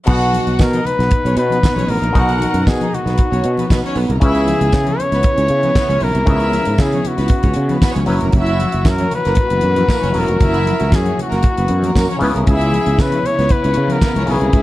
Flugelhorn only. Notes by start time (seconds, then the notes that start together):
0.11 F#4
0.61 A#4
0.86 B4
1.38 B4
1.90 A#4
2.68 G#4
2.95 F#4
4.24 G#4
5.00 C#5
6.03 A#4
6.81 G#4
7.08 F#4
8.37 F#4
8.89 A#4
9.16 B4
10.19 A#4
10.96 G#4
11.22 F#4
12.49 G#4
13.01 B4
13.26 C#5
13.52 B4
13.92 A#4
14.31 G#4